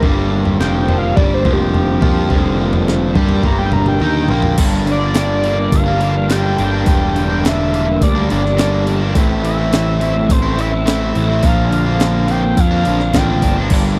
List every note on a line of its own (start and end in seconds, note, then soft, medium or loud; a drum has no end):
0.02 0.56 G1 loud
0.02 0.90 G2 medium
0.02 0.59 G2 medium
0.02 0.86 D3 medium
0.02 0.89 G3 medium
0.02 0.60 G3 loud
0.02 0.88 A#3 loud
0.02 0.88 D4 loud
0.02 kick loud
0.02 floor tom medium
0.45 floor tom medium
0.59 1.13 F1 loud
0.59 1.15 F2 loud
0.59 1.16 F3 loud
0.59 0.97 G5 loud
0.59 snare medium
0.88 2.29 G2 medium
0.88 2.28 D3 medium
0.88 2.29 G3 medium
0.88 2.30 A#3 medium
0.88 2.31 D4 medium
0.88 floor tom medium
0.98 1.16 F5 loud
1.16 1.43 G1 medium
1.16 1.44 G2 medium
1.16 1.44 G3 loud
1.16 1.34 D5 medium
1.16 kick loud
1.16 floor tom medium
1.34 1.53 C5 medium
1.44 1.98 F1 medium
1.44 2.01 F2 medium
1.44 1.99 F3 loud
1.44 kick loud
1.44 floor tom medium
1.53 2.65 G4 medium
1.74 floor tom medium
2.01 2.29 F2 medium
2.01 2.29 F3 medium
2.01 2.30 F4 medium
2.01 kick loud
2.01 floor tom medium
2.01 mid tom medium
2.29 3.12 F1 medium
2.29 3.15 F2 medium
2.29 3.14 G2 loud
2.29 3.14 D3 loud
2.29 3.15 F3 loud
2.29 3.14 G3 medium
2.29 3.14 A#3 loud
2.29 3.13 D4 medium
2.29 kick loud
2.29 floor tom medium
2.73 floor tom medium
2.88 snare medium
3.14 3.42 G2 medium
3.14 4.56 G2 medium
3.14 4.57 D3 medium
3.14 4.57 G3 medium
3.14 3.43 G3 medium
3.14 4.56 A#3 medium
3.14 4.56 D4 medium
3.14 3.44 G4 medium
3.14 kick loud
3.14 floor tom medium
3.29 floor tom medium
3.43 3.97 G1 medium
3.43 4.00 G2 medium
3.43 4.01 G3 loud
3.43 3.58 A#5 loud
3.43 kick loud
3.43 floor tom medium
3.58 3.72 G5 medium
3.72 3.86 A#5 medium
3.72 floor tom medium
3.72 mid tom medium
3.86 4.01 G5 medium
3.86 mid tom medium
4.00 4.28 D#2 loud
4.00 4.29 D#3 loud
4.00 4.29 D#4 loud
4.00 4.58 G5 loud
4.00 high tom medium
4.28 4.57 A#1 medium
4.28 4.58 A#2 medium
4.28 4.58 A#3 loud
4.28 mid tom medium
4.42 floor tom medium
4.57 5.69 G1 loud
4.57 6.01 G2 medium
4.57 5.14 G2 medium
4.57 5.15 D3 loud
4.57 5.04 G3 medium
4.57 5.02 A#3 medium
4.57 5.00 D4 loud
4.57 kick loud
4.57 open hi-hat medium
4.57 crash loud
4.86 5.13 D3 medium
4.86 open hi-hat medium
4.91 5.77 D5 loud
5.01 5.16 G3 medium
5.01 5.17 A#3 medium
5.01 5.18 D4 medium
5.14 6.28 G2 medium
5.14 6.58 D3 medium
5.14 5.42 D3 medium
5.14 5.45 G3 medium
5.14 5.45 A#3 loud
5.14 5.46 D4 medium
5.14 snare loud
5.14 open hi-hat medium
5.43 5.58 D3 medium
5.43 5.58 G3 medium
5.43 6.87 A#3 medium
5.43 5.58 A#3 medium
5.43 5.57 D4 medium
5.43 open hi-hat medium
5.58 muted overdriven electric guitar stroke medium
5.72 6.54 G1 medium
5.72 6.29 G3 medium
5.72 6.33 F5 loud
5.72 kick loud
5.72 open hi-hat medium
5.86 6.00 G3 medium
5.86 6.01 A#3 medium
5.86 6.01 D4 medium
6.00 6.15 D3 medium
6.00 6.16 G3 medium
6.00 6.15 A#3 medium
6.00 6.57 D4 medium
6.00 6.15 D4 medium
6.00 open hi-hat medium
6.16 muted overdriven electric guitar stroke soft
6.29 6.72 G2 medium
6.29 6.73 D3 loud
6.29 7.73 G3 medium
6.29 6.45 G3 loud
6.29 6.44 A#3 loud
6.29 6.42 D4 loud
6.29 6.88 G5 loud
6.29 snare loud
6.29 open hi-hat medium
6.43 6.74 G3 medium
6.43 6.73 A#3 medium
6.43 6.70 D4 medium
6.58 6.85 G1 medium
6.58 8.01 D4 medium
6.58 open hi-hat medium
6.72 6.87 G3 medium
6.72 6.88 A#3 medium
6.72 6.88 D4 medium
6.86 7.97 E1 loud
6.86 7.42 G2 medium
6.86 8.30 G2 medium
6.86 7.43 D3 medium
6.86 7.31 G3 medium
6.86 7.29 A#3 loud
6.86 7.28 D4 loud
6.86 7.47 G5 loud
6.86 kick loud
6.86 open hi-hat medium
7.15 7.44 D3 medium
7.15 open hi-hat soft
7.29 7.44 G3 medium
7.29 7.45 A#3 medium
7.29 7.45 D4 medium
7.43 8.01 G2 medium
7.43 7.71 D3 medium
7.43 8.87 D3 medium
7.43 7.72 G3 loud
7.43 7.73 A#3 loud
7.43 7.74 D4 loud
7.43 8.02 E5 loud
7.43 snare loud
7.43 open hi-hat medium
7.72 7.87 D3 medium
7.72 7.88 G3 medium
7.72 9.16 A#3 medium
7.72 7.87 A#3 medium
7.72 7.87 D4 medium
7.72 open hi-hat medium
7.88 muted overdriven electric guitar stroke medium
8.01 8.28 D2 loud
8.01 8.58 G3 medium
8.01 8.29 D5 loud
8.01 kick loud
8.01 open hi-hat medium
8.15 8.29 G3 medium
8.15 8.30 A#3 medium
8.15 8.30 D4 medium
8.29 9.12 G1 loud
8.29 8.43 D3 medium
8.29 8.43 G3 medium
8.29 8.43 A#3 medium
8.29 8.87 D4 medium
8.29 8.43 D4 medium
8.29 8.83 D5 medium
8.29 open hi-hat medium
8.44 muted overdriven electric guitar stroke medium
8.44 snare soft
8.57 9.01 G2 medium
8.57 9.01 D3 loud
8.57 8.74 G3 loud
8.57 9.16 G3 medium
8.57 8.72 A#3 loud
8.57 8.71 D4 loud
8.57 snare loud
8.57 open hi-hat medium
8.72 9.01 G3 medium
8.72 9.00 A#3 medium
8.72 8.98 D4 medium
8.87 9.16 D4 medium
8.87 open hi-hat medium
9.00 9.14 G3 medium
9.00 9.14 A#3 medium
9.00 9.13 D4 medium
9.14 10.25 A1 medium
9.14 9.70 A2 medium
9.14 10.58 A2 medium
9.14 9.71 E3 loud
9.14 9.59 A3 loud
9.14 9.59 C4 medium
9.14 9.56 E4 loud
9.14 kick loud
9.14 open hi-hat medium
9.43 9.72 E3 medium
9.43 10.33 E5 loud
9.43 open hi-hat medium
9.58 9.71 A3 medium
9.58 9.73 C4 medium
9.58 9.72 E4 medium
9.71 10.29 A2 loud
9.71 9.99 E3 medium
9.71 11.15 E3 medium
9.71 10.01 A3 loud
9.71 10.02 C4 loud
9.71 10.02 E4 loud
9.71 snare loud
9.71 open hi-hat medium
10.00 10.15 E3 medium
10.00 10.15 A3 medium
10.00 11.43 C4 medium
10.00 10.15 C4 medium
10.00 10.15 E4 medium
10.00 open hi-hat medium
10.16 muted overdriven electric guitar stroke soft
10.28 11.11 A1 medium
10.28 10.84 A3 medium
10.28 10.61 C5 medium
10.28 kick loud
10.28 open hi-hat medium
10.42 10.57 A3 medium
10.42 10.58 C4 medium
10.42 10.59 E4 medium
10.57 10.72 E3 medium
10.57 10.72 A3 medium
10.57 10.72 C4 medium
10.57 11.13 E4 medium
10.57 10.71 E4 medium
10.57 10.87 E5 loud
10.57 open hi-hat medium
10.72 muted overdriven electric guitar stroke medium
10.85 11.29 A2 loud
10.85 11.29 E3 loud
10.85 11.43 A3 medium
10.85 11.02 A3 loud
10.85 11.01 C4 loud
10.85 10.99 E4 loud
10.85 snare loud
10.85 open hi-hat medium
10.89 11.47 E5 loud
11.01 11.31 A3 medium
11.01 11.30 C4 medium
11.01 11.28 E4 medium
11.14 11.42 A1 medium
11.14 11.43 E4 medium
11.14 open hi-hat medium
11.29 11.43 A3 medium
11.29 11.43 C4 medium
11.29 11.42 E4 medium
11.42 12.53 A#1 medium
11.42 11.99 A#2 medium
11.42 12.86 A#2 medium
11.42 12.00 D3 medium
11.42 11.87 F3 loud
11.42 11.87 A#3 medium
11.42 11.86 D4 loud
11.42 12.32 F5 loud
11.42 kick loud
11.42 open hi-hat medium
11.70 11.97 D3 medium
11.70 open hi-hat medium
11.86 12.00 F3 medium
11.86 12.01 A#3 medium
11.86 12.02 D4 medium
11.99 12.57 A#2 loud
11.99 13.42 D3 medium
11.99 12.27 D3 medium
11.99 12.28 F3 medium
11.99 12.30 A#3 loud
11.99 snare loud
11.99 open hi-hat medium
12.03 12.31 D4 loud
12.28 12.44 D3 medium
12.28 12.43 F3 medium
12.28 12.44 A#3 medium
12.28 13.71 C4 medium
12.28 12.43 D4 medium
12.28 12.61 G5 loud
12.28 open hi-hat medium
12.44 muted overdriven electric guitar stroke soft
12.56 12.84 F2 medium
12.56 13.13 F3 medium
12.56 13.19 F5 loud
12.56 kick loud
12.56 open hi-hat medium
12.71 12.86 F3 medium
12.71 12.87 A#3 medium
12.71 12.88 D4 medium
12.85 13.12 A#1 medium
12.85 13.01 D3 medium
12.85 13.01 F3 medium
12.85 13.02 A#3 medium
12.85 13.42 D4 medium
12.85 13.01 D4 medium
12.85 open hi-hat medium
13.00 muted overdriven electric guitar stroke soft
13.00 snare soft
13.13 13.40 A1 medium
13.13 13.57 A#2 medium
13.13 13.58 D3 medium
13.13 13.71 F3 medium
13.13 13.30 F3 medium
13.13 13.59 G5 loud
13.13 kick medium
13.13 snare loud
13.13 open hi-hat medium
13.18 13.30 A#3 medium
13.18 13.29 D4 loud
13.29 13.60 F3 medium
13.29 13.59 A#3 medium
13.29 13.58 D4 medium
13.42 13.68 G1 medium
13.42 13.99 D4 medium
13.42 kick medium
13.42 open hi-hat medium
13.58 13.72 F3 medium
13.58 13.73 A#3 medium
13.58 13.74 D4 medium
13.70 13.99 G1 loud
13.70 13.99 G2 medium
13.70 13.99 D3 medium
13.70 13.99 G3 loud
13.70 13.99 A#3 loud
13.70 kick loud
13.70 crash loud
13.75 13.99 D4 medium